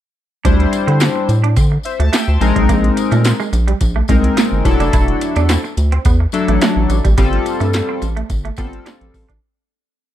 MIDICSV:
0, 0, Header, 1, 6, 480
1, 0, Start_track
1, 0, Tempo, 560748
1, 384, Time_signature, 4, 2, 24, 8
1, 8684, End_track
2, 0, Start_track
2, 0, Title_t, "Analog polysynth"
2, 0, Program_c, 0, 90
2, 382, Note_on_c, 0, 55, 88
2, 384, Note_on_c, 0, 62, 82
2, 386, Note_on_c, 0, 64, 76
2, 388, Note_on_c, 0, 72, 94
2, 1103, Note_off_c, 0, 55, 0
2, 1104, Note_off_c, 0, 62, 0
2, 1106, Note_off_c, 0, 64, 0
2, 1107, Note_off_c, 0, 72, 0
2, 1582, Note_on_c, 0, 76, 56
2, 1587, Note_on_c, 0, 72, 50
2, 1704, Note_off_c, 0, 76, 0
2, 1707, Note_off_c, 0, 72, 0
2, 1713, Note_on_c, 0, 81, 83
2, 1820, Note_off_c, 0, 81, 0
2, 1825, Note_on_c, 0, 79, 85
2, 1831, Note_on_c, 0, 76, 65
2, 1946, Note_off_c, 0, 79, 0
2, 1949, Note_off_c, 0, 76, 0
2, 1952, Note_on_c, 0, 84, 64
2, 1958, Note_on_c, 0, 81, 54
2, 2060, Note_on_c, 0, 56, 88
2, 2063, Note_on_c, 0, 60, 79
2, 2066, Note_on_c, 0, 63, 78
2, 2068, Note_on_c, 0, 70, 95
2, 2180, Note_off_c, 0, 84, 0
2, 2183, Note_off_c, 0, 81, 0
2, 2833, Note_off_c, 0, 56, 0
2, 2834, Note_off_c, 0, 60, 0
2, 2836, Note_off_c, 0, 63, 0
2, 2837, Note_off_c, 0, 70, 0
2, 3500, Note_on_c, 0, 56, 74
2, 3502, Note_on_c, 0, 60, 76
2, 3504, Note_on_c, 0, 63, 74
2, 3507, Note_on_c, 0, 70, 79
2, 3976, Note_on_c, 0, 54, 88
2, 3980, Note_on_c, 0, 62, 84
2, 3981, Note_on_c, 0, 64, 75
2, 3982, Note_off_c, 0, 56, 0
2, 3983, Note_off_c, 0, 60, 0
2, 3983, Note_on_c, 0, 69, 106
2, 3984, Note_off_c, 0, 63, 0
2, 3986, Note_off_c, 0, 70, 0
2, 4751, Note_off_c, 0, 54, 0
2, 4753, Note_off_c, 0, 62, 0
2, 4753, Note_off_c, 0, 64, 0
2, 4754, Note_off_c, 0, 69, 0
2, 5417, Note_on_c, 0, 54, 82
2, 5419, Note_on_c, 0, 62, 74
2, 5421, Note_on_c, 0, 64, 70
2, 5424, Note_on_c, 0, 69, 83
2, 5964, Note_off_c, 0, 54, 0
2, 5966, Note_off_c, 0, 62, 0
2, 5966, Note_off_c, 0, 64, 0
2, 5968, Note_off_c, 0, 69, 0
2, 6139, Note_on_c, 0, 55, 91
2, 6142, Note_on_c, 0, 60, 74
2, 6144, Note_on_c, 0, 65, 77
2, 6146, Note_on_c, 0, 69, 99
2, 6862, Note_off_c, 0, 55, 0
2, 6863, Note_off_c, 0, 60, 0
2, 6865, Note_off_c, 0, 65, 0
2, 6865, Note_off_c, 0, 69, 0
2, 7340, Note_on_c, 0, 55, 75
2, 7343, Note_on_c, 0, 59, 62
2, 7346, Note_on_c, 0, 65, 73
2, 7349, Note_on_c, 0, 69, 92
2, 7400, Note_on_c, 0, 60, 73
2, 7402, Note_off_c, 0, 59, 0
2, 7886, Note_off_c, 0, 55, 0
2, 7889, Note_off_c, 0, 65, 0
2, 7890, Note_off_c, 0, 69, 0
2, 7916, Note_off_c, 0, 60, 0
2, 8684, End_track
3, 0, Start_track
3, 0, Title_t, "Clean electric guitar"
3, 0, Program_c, 1, 27
3, 383, Note_on_c, 1, 62, 78
3, 474, Note_off_c, 1, 62, 0
3, 749, Note_on_c, 1, 60, 83
3, 830, Note_off_c, 1, 60, 0
3, 861, Note_on_c, 1, 60, 78
3, 953, Note_off_c, 1, 60, 0
3, 1229, Note_on_c, 1, 62, 71
3, 1310, Note_off_c, 1, 62, 0
3, 1341, Note_on_c, 1, 60, 60
3, 1433, Note_off_c, 1, 60, 0
3, 1710, Note_on_c, 1, 57, 77
3, 1791, Note_off_c, 1, 57, 0
3, 1820, Note_on_c, 1, 57, 83
3, 1912, Note_off_c, 1, 57, 0
3, 2190, Note_on_c, 1, 56, 73
3, 2271, Note_off_c, 1, 56, 0
3, 2303, Note_on_c, 1, 58, 89
3, 2394, Note_off_c, 1, 58, 0
3, 2668, Note_on_c, 1, 57, 81
3, 2750, Note_off_c, 1, 57, 0
3, 2908, Note_on_c, 1, 56, 83
3, 2989, Note_off_c, 1, 56, 0
3, 3146, Note_on_c, 1, 55, 73
3, 3229, Note_off_c, 1, 55, 0
3, 3388, Note_on_c, 1, 57, 72
3, 3470, Note_off_c, 1, 57, 0
3, 3501, Note_on_c, 1, 56, 74
3, 3593, Note_off_c, 1, 56, 0
3, 3742, Note_on_c, 1, 58, 93
3, 3834, Note_off_c, 1, 58, 0
3, 4110, Note_on_c, 1, 62, 79
3, 4191, Note_off_c, 1, 62, 0
3, 4224, Note_on_c, 1, 64, 73
3, 4315, Note_off_c, 1, 64, 0
3, 4593, Note_on_c, 1, 62, 83
3, 4673, Note_off_c, 1, 62, 0
3, 4702, Note_on_c, 1, 60, 81
3, 4794, Note_off_c, 1, 60, 0
3, 5070, Note_on_c, 1, 60, 77
3, 5151, Note_off_c, 1, 60, 0
3, 5185, Note_on_c, 1, 59, 69
3, 5275, Note_off_c, 1, 59, 0
3, 5551, Note_on_c, 1, 57, 83
3, 5632, Note_off_c, 1, 57, 0
3, 5664, Note_on_c, 1, 57, 82
3, 5755, Note_off_c, 1, 57, 0
3, 6031, Note_on_c, 1, 55, 70
3, 6111, Note_off_c, 1, 55, 0
3, 6144, Note_on_c, 1, 55, 96
3, 6235, Note_off_c, 1, 55, 0
3, 6509, Note_on_c, 1, 57, 76
3, 6591, Note_off_c, 1, 57, 0
3, 6752, Note_on_c, 1, 60, 86
3, 6832, Note_off_c, 1, 60, 0
3, 6990, Note_on_c, 1, 57, 76
3, 7071, Note_off_c, 1, 57, 0
3, 7232, Note_on_c, 1, 57, 72
3, 7312, Note_off_c, 1, 57, 0
3, 7344, Note_on_c, 1, 60, 75
3, 7435, Note_off_c, 1, 60, 0
3, 7582, Note_on_c, 1, 62, 91
3, 7674, Note_off_c, 1, 62, 0
3, 7949, Note_on_c, 1, 62, 75
3, 8030, Note_off_c, 1, 62, 0
3, 8684, End_track
4, 0, Start_track
4, 0, Title_t, "Analog synth bass"
4, 0, Program_c, 2, 38
4, 386, Note_on_c, 2, 38, 101
4, 566, Note_off_c, 2, 38, 0
4, 750, Note_on_c, 2, 50, 84
4, 931, Note_off_c, 2, 50, 0
4, 1102, Note_on_c, 2, 45, 97
4, 1342, Note_on_c, 2, 50, 91
4, 1354, Note_off_c, 2, 45, 0
4, 1524, Note_off_c, 2, 50, 0
4, 1708, Note_on_c, 2, 38, 93
4, 1795, Note_off_c, 2, 38, 0
4, 1950, Note_on_c, 2, 38, 91
4, 2036, Note_off_c, 2, 38, 0
4, 2061, Note_on_c, 2, 34, 89
4, 2158, Note_off_c, 2, 34, 0
4, 2192, Note_on_c, 2, 35, 83
4, 2277, Note_off_c, 2, 35, 0
4, 2304, Note_on_c, 2, 34, 97
4, 2485, Note_off_c, 2, 34, 0
4, 2669, Note_on_c, 2, 46, 97
4, 2851, Note_off_c, 2, 46, 0
4, 3019, Note_on_c, 2, 34, 94
4, 3202, Note_off_c, 2, 34, 0
4, 3262, Note_on_c, 2, 34, 87
4, 3444, Note_off_c, 2, 34, 0
4, 3502, Note_on_c, 2, 36, 97
4, 3684, Note_off_c, 2, 36, 0
4, 3869, Note_on_c, 2, 31, 76
4, 3955, Note_off_c, 2, 31, 0
4, 3980, Note_on_c, 2, 28, 95
4, 4077, Note_off_c, 2, 28, 0
4, 4108, Note_on_c, 2, 29, 90
4, 4194, Note_off_c, 2, 29, 0
4, 4223, Note_on_c, 2, 28, 92
4, 4405, Note_off_c, 2, 28, 0
4, 4591, Note_on_c, 2, 40, 88
4, 4772, Note_off_c, 2, 40, 0
4, 4942, Note_on_c, 2, 38, 89
4, 5124, Note_off_c, 2, 38, 0
4, 5182, Note_on_c, 2, 40, 96
4, 5364, Note_off_c, 2, 40, 0
4, 5550, Note_on_c, 2, 33, 89
4, 5636, Note_off_c, 2, 33, 0
4, 5788, Note_on_c, 2, 33, 92
4, 5874, Note_off_c, 2, 33, 0
4, 5901, Note_on_c, 2, 33, 90
4, 5998, Note_off_c, 2, 33, 0
4, 6033, Note_on_c, 2, 32, 84
4, 6117, Note_off_c, 2, 32, 0
4, 6146, Note_on_c, 2, 31, 97
4, 6326, Note_off_c, 2, 31, 0
4, 6511, Note_on_c, 2, 43, 94
4, 6692, Note_off_c, 2, 43, 0
4, 6866, Note_on_c, 2, 33, 100
4, 7046, Note_off_c, 2, 33, 0
4, 7103, Note_on_c, 2, 31, 98
4, 7285, Note_off_c, 2, 31, 0
4, 7345, Note_on_c, 2, 31, 78
4, 7526, Note_off_c, 2, 31, 0
4, 7714, Note_on_c, 2, 33, 85
4, 7798, Note_off_c, 2, 33, 0
4, 7825, Note_on_c, 2, 33, 94
4, 7921, Note_off_c, 2, 33, 0
4, 7956, Note_on_c, 2, 32, 85
4, 8039, Note_off_c, 2, 32, 0
4, 8684, End_track
5, 0, Start_track
5, 0, Title_t, "Muted clean electric guitar strokes"
5, 622, Note_on_c, 9, 29, 46
5, 708, Note_off_c, 9, 29, 0
5, 990, Note_on_c, 9, 29, 50
5, 1075, Note_off_c, 9, 29, 0
5, 1470, Note_on_c, 9, 29, 43
5, 1556, Note_off_c, 9, 29, 0
5, 2063, Note_on_c, 9, 29, 42
5, 2149, Note_off_c, 9, 29, 0
5, 2541, Note_on_c, 9, 29, 45
5, 2627, Note_off_c, 9, 29, 0
5, 3021, Note_on_c, 9, 29, 45
5, 3107, Note_off_c, 9, 29, 0
5, 3261, Note_on_c, 9, 29, 44
5, 3346, Note_off_c, 9, 29, 0
5, 3982, Note_on_c, 9, 29, 43
5, 4068, Note_off_c, 9, 29, 0
5, 4465, Note_on_c, 9, 29, 44
5, 4551, Note_off_c, 9, 29, 0
5, 4829, Note_on_c, 9, 29, 49
5, 4915, Note_off_c, 9, 29, 0
5, 5310, Note_on_c, 9, 29, 50
5, 5396, Note_off_c, 9, 29, 0
5, 5905, Note_on_c, 9, 29, 43
5, 5990, Note_off_c, 9, 29, 0
5, 6384, Note_on_c, 9, 29, 40
5, 6470, Note_off_c, 9, 29, 0
5, 6864, Note_on_c, 9, 29, 46
5, 6950, Note_off_c, 9, 29, 0
5, 7104, Note_on_c, 9, 29, 42
5, 7190, Note_off_c, 9, 29, 0
5, 7823, Note_on_c, 9, 29, 44
5, 7909, Note_off_c, 9, 29, 0
5, 8684, End_track
6, 0, Start_track
6, 0, Title_t, "Drums"
6, 385, Note_on_c, 9, 36, 127
6, 385, Note_on_c, 9, 42, 101
6, 385, Note_on_c, 9, 54, 50
6, 470, Note_off_c, 9, 36, 0
6, 471, Note_off_c, 9, 42, 0
6, 471, Note_off_c, 9, 54, 0
6, 514, Note_on_c, 9, 42, 37
6, 599, Note_off_c, 9, 42, 0
6, 622, Note_on_c, 9, 54, 58
6, 624, Note_on_c, 9, 42, 78
6, 707, Note_off_c, 9, 54, 0
6, 710, Note_off_c, 9, 42, 0
6, 753, Note_on_c, 9, 42, 47
6, 839, Note_off_c, 9, 42, 0
6, 857, Note_on_c, 9, 54, 93
6, 867, Note_on_c, 9, 42, 92
6, 869, Note_on_c, 9, 38, 118
6, 873, Note_on_c, 9, 39, 96
6, 943, Note_off_c, 9, 54, 0
6, 952, Note_off_c, 9, 42, 0
6, 955, Note_off_c, 9, 38, 0
6, 958, Note_off_c, 9, 39, 0
6, 1102, Note_on_c, 9, 54, 50
6, 1107, Note_on_c, 9, 42, 77
6, 1188, Note_off_c, 9, 54, 0
6, 1193, Note_off_c, 9, 42, 0
6, 1233, Note_on_c, 9, 42, 54
6, 1318, Note_off_c, 9, 42, 0
6, 1338, Note_on_c, 9, 54, 62
6, 1342, Note_on_c, 9, 42, 77
6, 1343, Note_on_c, 9, 36, 102
6, 1424, Note_off_c, 9, 54, 0
6, 1427, Note_off_c, 9, 42, 0
6, 1429, Note_off_c, 9, 36, 0
6, 1571, Note_on_c, 9, 54, 44
6, 1586, Note_on_c, 9, 42, 73
6, 1656, Note_off_c, 9, 54, 0
6, 1672, Note_off_c, 9, 42, 0
6, 1712, Note_on_c, 9, 42, 62
6, 1797, Note_off_c, 9, 42, 0
6, 1823, Note_on_c, 9, 42, 103
6, 1827, Note_on_c, 9, 54, 88
6, 1830, Note_on_c, 9, 38, 124
6, 1834, Note_on_c, 9, 39, 91
6, 1909, Note_off_c, 9, 42, 0
6, 1912, Note_off_c, 9, 54, 0
6, 1916, Note_off_c, 9, 38, 0
6, 1920, Note_off_c, 9, 39, 0
6, 2064, Note_on_c, 9, 54, 44
6, 2066, Note_on_c, 9, 42, 73
6, 2150, Note_off_c, 9, 54, 0
6, 2152, Note_off_c, 9, 42, 0
6, 2191, Note_on_c, 9, 36, 95
6, 2192, Note_on_c, 9, 42, 57
6, 2277, Note_off_c, 9, 36, 0
6, 2278, Note_off_c, 9, 42, 0
6, 2304, Note_on_c, 9, 36, 116
6, 2305, Note_on_c, 9, 42, 96
6, 2306, Note_on_c, 9, 54, 48
6, 2389, Note_off_c, 9, 36, 0
6, 2390, Note_off_c, 9, 42, 0
6, 2391, Note_off_c, 9, 54, 0
6, 2432, Note_on_c, 9, 42, 34
6, 2518, Note_off_c, 9, 42, 0
6, 2541, Note_on_c, 9, 54, 59
6, 2544, Note_on_c, 9, 42, 85
6, 2627, Note_off_c, 9, 54, 0
6, 2630, Note_off_c, 9, 42, 0
6, 2664, Note_on_c, 9, 54, 34
6, 2671, Note_on_c, 9, 42, 49
6, 2750, Note_off_c, 9, 54, 0
6, 2757, Note_off_c, 9, 42, 0
6, 2776, Note_on_c, 9, 54, 89
6, 2784, Note_on_c, 9, 42, 89
6, 2786, Note_on_c, 9, 38, 118
6, 2790, Note_on_c, 9, 39, 96
6, 2862, Note_off_c, 9, 54, 0
6, 2869, Note_off_c, 9, 42, 0
6, 2872, Note_off_c, 9, 38, 0
6, 2876, Note_off_c, 9, 39, 0
6, 2910, Note_on_c, 9, 54, 36
6, 2996, Note_off_c, 9, 54, 0
6, 3020, Note_on_c, 9, 54, 52
6, 3025, Note_on_c, 9, 42, 78
6, 3105, Note_off_c, 9, 54, 0
6, 3110, Note_off_c, 9, 42, 0
6, 3149, Note_on_c, 9, 42, 54
6, 3235, Note_off_c, 9, 42, 0
6, 3258, Note_on_c, 9, 54, 57
6, 3259, Note_on_c, 9, 42, 77
6, 3261, Note_on_c, 9, 36, 110
6, 3343, Note_off_c, 9, 54, 0
6, 3344, Note_off_c, 9, 42, 0
6, 3347, Note_off_c, 9, 36, 0
6, 3492, Note_on_c, 9, 54, 50
6, 3502, Note_on_c, 9, 36, 104
6, 3503, Note_on_c, 9, 42, 76
6, 3577, Note_off_c, 9, 54, 0
6, 3588, Note_off_c, 9, 36, 0
6, 3589, Note_off_c, 9, 42, 0
6, 3630, Note_on_c, 9, 42, 59
6, 3715, Note_off_c, 9, 42, 0
6, 3741, Note_on_c, 9, 42, 105
6, 3745, Note_on_c, 9, 54, 80
6, 3748, Note_on_c, 9, 38, 117
6, 3752, Note_on_c, 9, 39, 91
6, 3827, Note_off_c, 9, 42, 0
6, 3831, Note_off_c, 9, 54, 0
6, 3834, Note_off_c, 9, 38, 0
6, 3838, Note_off_c, 9, 39, 0
6, 3980, Note_on_c, 9, 36, 89
6, 3982, Note_on_c, 9, 54, 45
6, 3983, Note_on_c, 9, 42, 73
6, 4065, Note_off_c, 9, 36, 0
6, 4068, Note_off_c, 9, 42, 0
6, 4068, Note_off_c, 9, 54, 0
6, 4110, Note_on_c, 9, 54, 33
6, 4111, Note_on_c, 9, 42, 53
6, 4196, Note_off_c, 9, 42, 0
6, 4196, Note_off_c, 9, 54, 0
6, 4222, Note_on_c, 9, 42, 115
6, 4223, Note_on_c, 9, 36, 112
6, 4223, Note_on_c, 9, 54, 50
6, 4307, Note_off_c, 9, 42, 0
6, 4308, Note_off_c, 9, 36, 0
6, 4309, Note_off_c, 9, 54, 0
6, 4350, Note_on_c, 9, 42, 35
6, 4435, Note_off_c, 9, 42, 0
6, 4462, Note_on_c, 9, 54, 53
6, 4463, Note_on_c, 9, 42, 86
6, 4547, Note_off_c, 9, 54, 0
6, 4549, Note_off_c, 9, 42, 0
6, 4584, Note_on_c, 9, 54, 34
6, 4589, Note_on_c, 9, 42, 52
6, 4670, Note_off_c, 9, 54, 0
6, 4675, Note_off_c, 9, 42, 0
6, 4698, Note_on_c, 9, 54, 94
6, 4703, Note_on_c, 9, 42, 89
6, 4705, Note_on_c, 9, 38, 124
6, 4709, Note_on_c, 9, 39, 90
6, 4784, Note_off_c, 9, 54, 0
6, 4788, Note_off_c, 9, 42, 0
6, 4791, Note_off_c, 9, 38, 0
6, 4795, Note_off_c, 9, 39, 0
6, 4832, Note_on_c, 9, 54, 36
6, 4917, Note_off_c, 9, 54, 0
6, 4941, Note_on_c, 9, 54, 51
6, 4944, Note_on_c, 9, 42, 84
6, 5027, Note_off_c, 9, 54, 0
6, 5029, Note_off_c, 9, 42, 0
6, 5069, Note_on_c, 9, 42, 49
6, 5155, Note_off_c, 9, 42, 0
6, 5177, Note_on_c, 9, 54, 57
6, 5178, Note_on_c, 9, 42, 85
6, 5182, Note_on_c, 9, 36, 110
6, 5262, Note_off_c, 9, 54, 0
6, 5264, Note_off_c, 9, 42, 0
6, 5267, Note_off_c, 9, 36, 0
6, 5411, Note_on_c, 9, 54, 51
6, 5425, Note_on_c, 9, 42, 73
6, 5497, Note_off_c, 9, 54, 0
6, 5510, Note_off_c, 9, 42, 0
6, 5550, Note_on_c, 9, 42, 59
6, 5636, Note_off_c, 9, 42, 0
6, 5662, Note_on_c, 9, 42, 107
6, 5665, Note_on_c, 9, 54, 90
6, 5669, Note_on_c, 9, 38, 115
6, 5673, Note_on_c, 9, 39, 88
6, 5748, Note_off_c, 9, 42, 0
6, 5751, Note_off_c, 9, 54, 0
6, 5755, Note_off_c, 9, 38, 0
6, 5759, Note_off_c, 9, 39, 0
6, 5903, Note_on_c, 9, 54, 51
6, 5904, Note_on_c, 9, 42, 69
6, 5988, Note_off_c, 9, 54, 0
6, 5990, Note_off_c, 9, 42, 0
6, 6032, Note_on_c, 9, 36, 94
6, 6033, Note_on_c, 9, 42, 57
6, 6033, Note_on_c, 9, 54, 29
6, 6118, Note_off_c, 9, 36, 0
6, 6118, Note_off_c, 9, 42, 0
6, 6118, Note_off_c, 9, 54, 0
6, 6143, Note_on_c, 9, 42, 103
6, 6145, Note_on_c, 9, 36, 113
6, 6147, Note_on_c, 9, 54, 51
6, 6229, Note_off_c, 9, 42, 0
6, 6230, Note_off_c, 9, 36, 0
6, 6232, Note_off_c, 9, 54, 0
6, 6273, Note_on_c, 9, 42, 37
6, 6358, Note_off_c, 9, 42, 0
6, 6384, Note_on_c, 9, 54, 54
6, 6386, Note_on_c, 9, 42, 73
6, 6469, Note_off_c, 9, 54, 0
6, 6472, Note_off_c, 9, 42, 0
6, 6505, Note_on_c, 9, 54, 35
6, 6516, Note_on_c, 9, 42, 47
6, 6590, Note_off_c, 9, 54, 0
6, 6602, Note_off_c, 9, 42, 0
6, 6620, Note_on_c, 9, 54, 90
6, 6628, Note_on_c, 9, 42, 86
6, 6631, Note_on_c, 9, 38, 122
6, 6634, Note_on_c, 9, 39, 91
6, 6705, Note_off_c, 9, 54, 0
6, 6714, Note_off_c, 9, 42, 0
6, 6716, Note_off_c, 9, 38, 0
6, 6720, Note_off_c, 9, 39, 0
6, 6863, Note_on_c, 9, 54, 53
6, 6868, Note_on_c, 9, 42, 77
6, 6949, Note_off_c, 9, 54, 0
6, 6954, Note_off_c, 9, 42, 0
6, 6993, Note_on_c, 9, 42, 51
6, 7078, Note_off_c, 9, 42, 0
6, 7101, Note_on_c, 9, 54, 59
6, 7102, Note_on_c, 9, 42, 71
6, 7104, Note_on_c, 9, 36, 102
6, 7187, Note_off_c, 9, 42, 0
6, 7187, Note_off_c, 9, 54, 0
6, 7190, Note_off_c, 9, 36, 0
6, 7236, Note_on_c, 9, 42, 34
6, 7321, Note_off_c, 9, 42, 0
6, 7332, Note_on_c, 9, 54, 51
6, 7345, Note_on_c, 9, 36, 108
6, 7346, Note_on_c, 9, 42, 72
6, 7418, Note_off_c, 9, 54, 0
6, 7431, Note_off_c, 9, 36, 0
6, 7432, Note_off_c, 9, 42, 0
6, 7474, Note_on_c, 9, 42, 60
6, 7560, Note_off_c, 9, 42, 0
6, 7586, Note_on_c, 9, 42, 104
6, 7586, Note_on_c, 9, 54, 79
6, 7593, Note_on_c, 9, 38, 115
6, 7597, Note_on_c, 9, 39, 85
6, 7671, Note_off_c, 9, 42, 0
6, 7672, Note_off_c, 9, 54, 0
6, 7678, Note_off_c, 9, 38, 0
6, 7682, Note_off_c, 9, 39, 0
6, 7715, Note_on_c, 9, 42, 36
6, 7801, Note_off_c, 9, 42, 0
6, 7824, Note_on_c, 9, 36, 93
6, 7825, Note_on_c, 9, 54, 45
6, 7829, Note_on_c, 9, 46, 73
6, 7910, Note_off_c, 9, 36, 0
6, 7911, Note_off_c, 9, 54, 0
6, 7914, Note_off_c, 9, 46, 0
6, 7954, Note_on_c, 9, 54, 29
6, 7955, Note_on_c, 9, 36, 85
6, 7957, Note_on_c, 9, 42, 51
6, 8039, Note_off_c, 9, 54, 0
6, 8040, Note_off_c, 9, 36, 0
6, 8043, Note_off_c, 9, 42, 0
6, 8684, End_track
0, 0, End_of_file